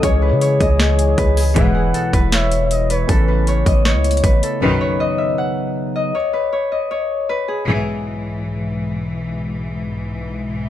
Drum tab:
HH |x-----x--x-----x--x--o--|x-----x--x--x--x--x--x--|x-----x--x-----xxxx--x--|------------------------|
SD |------------o-----------|------------o-----------|------------o-----------|------------------------|
BD |o--------o--------o-----|o--------o--------------|o--------o--------o-----|------------------------|

HH |------------------------|------------------------|------------------------|
SD |------------------------|------------------------|------------------------|
BD |------------------------|------------------------|------------------------|